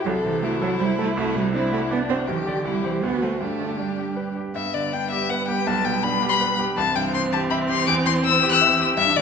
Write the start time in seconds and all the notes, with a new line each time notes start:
0.05 C2 F#3 A4
0.24 C3 E3
0.42 A3 E4 F#4
0.61 F#3 A4
0.79 G3 E4 C5
0.98 A3 A4
1.16 C2 A3 F#4
1.35 C3 G3
1.54 C4 D4 E4
1.72 A3 F#4
1.91 B3 D4 D5
2.09 C4 F#4
2.27 B1 E3 G4
2.47 D3 G4 D5
2.65 C2 G3 E4
2.83 E3 G4 C5
3.03 D2 B3 F#4
3.22 A3 F#4 C5
3.41 G2 A3 D4 G4
3.60 D3
3.79 G3 D4
3.98 G4
4.16 B4
4.37 G4
4.55 G2 G3 B3 E5
4.74 D3 D5
4.93 D4 G5
5.11 G4 E5
5.30 B4 F#5
5.48 G4 G5
5.67 B1 A5
5.85 B2 G5
6.03 D4 B5
6.23 G4
6.29 B5 C6
6.41 B4
6.59 G4
6.77 C2 E3 C4 A5
6.96 G2 G5
7.14 C4 C6
7.33 G4 A5
7.50 E5 B5
7.69 G4 C6
7.87 E2 D6
8.06 E3 C6
8.25 C4 E6
8.43 G4
8.51 E6 F#6
8.61 E5
8.80 G4
8.97 G2 E3 D4 E5
9.16 D3 D5